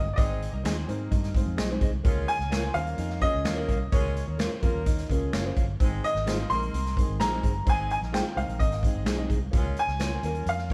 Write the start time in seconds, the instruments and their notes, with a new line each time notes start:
Already playing: fingered electric bass G1, hollow-body jazz guitar D#4, grand piano D#5
0.13 upright piano G#3 C4, horn section D#4, grand piano D5 D#5
0.18 fingered electric bass G#1, horn section G#3 C4 G#4, upright piano D#4 G#4 C5, kick, closed hi-hat
0.42 closed hi-hat
0.53 fingered electric bass C2, horn section A#3 D#4 G4 A#4
0.63 fingered electric bass D#2, upright piano G#3 C4 D#4 G#4 C5, horn section C4 D#4 G#4 C5, clean electric guitar G#4 C5 D#5, finger snap, snare, closed hi-hat
0.86 fingered electric bass G#2, upright piano G#3 C4 D#4 G#4 C5, horn section A#3 C4 D#4 A#4, closed hi-hat
1.11 fingered electric bass G2, hollow-body jazz guitar D#4, kick, closed hi-hat
1.23 snare, closed hi-hat
1.33 horn section G#3 C4 D#4 G#4, upright piano G#3 C4 D#4 G#4 C5, hollow-body jazz guitar F4, kick, closed hi-hat
1.46 fingered electric bass F2
1.57 fingered electric bass B1, hollow-body jazz guitar D#4, clean electric guitar G#4 C5 D#5, finger snap, snare, closed hi-hat
1.70 upright piano G#3 C4 D#4 G#4 C5
1.81 fingered electric bass C2, clean electric guitar G#4 C5 D#5, kick, closed hi-hat
2.04 fingered electric bass C#2, horn section G#3 C#4 F4 G#4, upright piano A#3 C#4 F4 G#4 A#4, kick, closed hi-hat
2.28 grand piano G#5, closed hi-hat
2.39 fingered electric bass C#2, horn section A#3 C#4 F4 A#4, snare
2.50 upright piano A#3 C#4 F4 G#4 A#4, horn section C4 F4 G#4 C5, clean electric guitar A#4 C#5 F5, finger snap, snare, closed hi-hat
2.74 fingered electric bass D#2, upright piano A#3 C#4 F4 G#4 C5, horn section A#3 C#4 F4 A#4, hollow-body jazz guitar F4, grand piano F5, closed hi-hat
2.87 closed hi-hat
2.98 fingered electric bass F2, hollow-body jazz guitar D#4, closed hi-hat
3.10 snare
3.20 horn section G#3 C#4 F4 G#4, upright piano A#3 C#4 F4 G#4 A#4, hollow-body jazz guitar C#4, grand piano D#5, kick, closed hi-hat
3.34 fingered electric bass C#2
3.45 fingered electric bass D#2, horn section A#3 C#4 F4 A#4, clean electric guitar A#4 C#5 F5, finger snap, snare, closed hi-hat
3.55 upright piano A#3 C#4 F4 G#4 A#4
3.68 fingered electric bass C2, clean electric guitar A#4 C#5 F5, kick, closed hi-hat
3.92 fingered electric bass C#2, horn section G#3 C#4 F4 G#4, upright piano A#3 C#4 F4 G#4 A#4, grand piano C#5, kick, closed hi-hat
4.17 closed hi-hat
4.27 fingered electric bass D#2, horn section A#3 C#4 F4 A#4
4.38 upright piano A#3 C#4 F4 G#4 A#4, horn section C4 F4 G#4 C5, clean electric guitar A#4 C#5 F5, finger snap, snare, closed hi-hat
4.61 fingered electric bass F2, upright piano A#3 C#4 F4 G#4 A#4, horn section A#3 C#4 F4 A#4, hollow-body jazz guitar F4, kick, closed hi-hat
4.74 fingered electric bass D#2
4.86 hollow-body jazz guitar D#4, kick, closed hi-hat
4.98 snare, closed hi-hat
5.09 fingered electric bass C#2, horn section G#3 C#4 F4 G#4, upright piano A#3 C#4 F4 G#4 A#4, hollow-body jazz guitar C#4, kick, closed hi-hat
5.33 fingered electric bass F#1, clean electric guitar A#4 C#5 F5, finger snap, snare, closed hi-hat
5.44 upright piano A#3 C#4 F4 G#4 C5
5.56 fingered electric bass G1, clean electric guitar A#4 C#5 F5, kick, closed hi-hat
5.80 fingered electric bass G#1, horn section G#3 C4 D#4 G#4, upright piano G#3 C4 D#4 G#4 C5, kick, closed hi-hat
6.04 grand piano D#5, closed hi-hat
6.15 fingered electric bass G#1, horn section A#3 D#4 G4 A#4, snare
6.26 upright piano G#3 C4 D#4 G#4 C5, horn section C4 D#4 G#4 C5, clean electric guitar D#4 G#4 C5, hollow-body jazz guitar F4, finger snap, snare, closed hi-hat
6.49 fingered electric bass A#1, upright piano G#3 C4 D#4 G#4 A#4, horn section A#3 C4 D#4 A#4, hollow-body jazz guitar D#4, grand piano C6, closed hi-hat
6.62 closed hi-hat
6.73 fingered electric bass C2, hollow-body jazz guitar C4, closed hi-hat
6.86 snare, closed hi-hat
6.97 upright piano G#3 C4 D#4 G#4 A#4, horn section G#3 C4 D#4 G#4, kick, closed hi-hat
7.09 fingered electric bass G#1
7.20 fingered electric bass A#1, horn section A#3 C4 D#4 A#4, clean electric guitar D#4 G#4 C5, grand piano A#5, finger snap, snare, closed hi-hat
7.32 upright piano G#3 C4 D#4 G#4 C5
7.43 fingered electric bass G1, clean electric guitar D#4 G#4 C5, kick, closed hi-hat
7.65 fingered electric bass G#1, upright piano G#3 C4 D#4 G#4 C5, horn section G#3 C4 D#4 G#4, kick, closed hi-hat
7.70 grand piano G#5
7.90 grand piano G#5, closed hi-hat
8.01 fingered electric bass A#1, horn section A#3 D#4 G4 A#4, snare
8.12 upright piano G#3 C4 D#4 G#4 C5, horn section C4 D#4 G#4 C5, clean electric guitar D#4 G#4 C5, hollow-body jazz guitar F4, grand piano G5, finger snap, snare, closed hi-hat
8.34 fingered electric bass C2, upright piano G#3 C4 D#4 G#4 C5, horn section A#3 C4 D#4 A#4, hollow-body jazz guitar D#4, grand piano F5, closed hi-hat
8.48 fingered electric bass A#1, closed hi-hat
8.59 fingered electric bass G#1, hollow-body jazz guitar C4, grand piano D#5, kick, closed hi-hat
8.71 snare, closed hi-hat
8.83 upright piano G#3 C4 D#4 G#4 D#5, horn section G#3 C4 D#4 G#4, kick, closed hi-hat
8.94 fingered electric bass G1
9.05 fingered electric bass B1, clean electric guitar D#4 G#4 C5, finger snap, snare, closed hi-hat
9.16 upright piano G#3 C4 D#4 G#4 D#5
9.28 fingered electric bass C2, clean electric guitar D#4 G#4 C5, kick, closed hi-hat
9.51 fingered electric bass C#2, horn section G#3 C#4 F4 G#4, upright piano A#3 C#4 F4 G#4 A#4, kick, closed hi-hat
9.76 grand piano G#5, closed hi-hat
9.87 fingered electric bass C#2, horn section A#3 C#4 F4 A#4, snare
9.99 upright piano A#3 C#4 F4 G#4 A#4, horn section C4 F4 G#4 C5, clean electric guitar F4 A#4 C#5, finger snap, snare, closed hi-hat
10.23 fingered electric bass D#2, upright piano A#3 C#4 F4 G#4 A#4, horn section A#3 C#4 F4 A#4, closed hi-hat
10.35 closed hi-hat
10.46 fingered electric bass F2, grand piano F5, closed hi-hat
10.58 snare
10.70 horn section G#3 G#4, upright piano A#3, kick